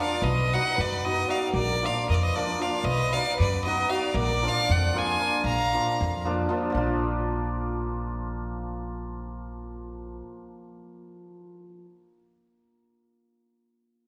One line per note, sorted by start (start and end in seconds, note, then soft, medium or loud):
0.00 0.28 F3 medium
0.00 0.16 A#3 medium
0.00 0.16 D4 medium
0.00 0.17 F4 medium
0.00 0.23 D5 medium
0.00 0.25 F5 medium
0.21 0.55 B1 loud
0.21 0.55 B4 medium
0.21 0.55 D#5 loud
0.53 1.03 F#3 medium
0.53 0.72 B3 medium
0.53 0.72 D#4 medium
0.53 0.72 F#4 medium
0.53 0.77 D#5 loud
0.53 0.82 F#5 loud
0.75 1.23 F#2 medium
0.75 1.07 B4 medium
0.81 1.06 D5 loud
1.04 1.27 F#3 medium
1.04 1.22 B3 medium
1.04 1.23 D#4 medium
1.04 1.23 F#4 medium
1.04 1.29 B4 medium
1.04 1.32 D#5 loud
1.28 1.58 F#3 medium
1.28 1.46 B3 medium
1.28 1.47 D#4 medium
1.28 1.46 F#4 medium
1.28 1.52 D5 medium
1.28 1.52 F5 medium
1.53 1.87 A#1 medium
1.53 1.85 A#4 medium
1.53 1.87 D5 loud
1.83 2.35 F3 medium
1.83 2.02 A#3 medium
1.83 2.02 D4 soft
1.83 2.02 F4 medium
1.83 2.07 D5 loud
1.83 2.09 F5 medium
2.08 2.54 F2 medium
2.08 2.13 A#4 medium
2.08 2.16 D#5 loud
2.13 2.24 A#4 medium
2.13 2.25 D5 medium
2.23 2.37 B4 medium
2.23 2.37 D#5 loud
2.35 2.58 F3 medium
2.35 2.53 A#3 medium
2.35 2.54 D4 medium
2.35 2.54 F4 medium
2.35 2.61 A#4 medium
2.35 2.63 D5 loud
2.59 2.88 F3 medium
2.59 2.77 A#3 medium
2.59 2.77 D4 medium
2.59 2.77 F4 medium
2.59 2.86 D5 medium
2.59 2.86 F5 medium
2.84 3.17 B1 medium
2.84 3.15 B4 loud
2.84 3.14 D#5 loud
3.13 3.64 F#3 medium
3.13 3.31 B3 medium
3.13 3.32 D#4 medium
3.13 3.32 F#4 medium
3.13 3.37 D5 loud
3.13 3.38 F5 loud
3.37 3.84 F#2 medium
3.37 3.64 B4 medium
3.37 3.64 D5 loud
3.65 3.87 F#3 medium
3.65 3.83 B3 medium
3.65 3.83 D#4 medium
3.65 3.84 F#4 medium
3.65 3.90 B4 medium
3.65 3.91 D#5 loud
3.88 4.18 F#3 medium
3.88 4.06 B3 medium
3.88 4.07 D#4 medium
3.88 4.07 F#4 medium
3.88 4.15 D5 loud
3.88 4.17 F5 medium
4.14 4.47 A#1 medium
4.14 4.46 A#4 loud
4.14 4.50 D5 loud
4.42 4.93 F3 medium
4.42 4.61 A#3 medium
4.42 4.62 D4 medium
4.42 4.62 F4 medium
4.42 4.70 D5 loud
4.48 4.73 F5 loud
4.69 5.14 F2 loud
4.69 5.00 D5 medium
4.69 5.00 F#5 loud
4.94 5.18 F3 medium
4.94 5.13 A#3 medium
4.94 5.13 D4 medium
4.94 5.13 F4 medium
4.98 5.44 F5 medium
4.98 5.45 G#5 loud
5.19 5.49 F3 medium
5.19 5.37 A#3 medium
5.19 5.37 D4 medium
5.19 5.38 F4 medium
5.44 5.77 A#1 medium
5.44 6.23 F5 loud
5.44 6.24 A#5 loud
5.72 6.24 F3 medium
5.72 5.92 A#3 medium
5.72 5.92 D4 medium
5.72 5.92 F4 medium
6.01 6.45 F2 loud
6.25 6.48 F3 medium
6.25 6.43 A#3 medium
6.25 6.44 D4 medium
6.25 6.44 F4 medium
6.49 6.69 F3 medium
6.49 6.67 A#3 medium
6.49 6.67 D4 medium
6.49 6.67 F4 medium
6.70 11.80 F3 medium
6.70 11.01 A#3 medium
6.75 10.20 A#1 medium
6.75 10.48 D4 medium
6.75 10.23 F4 medium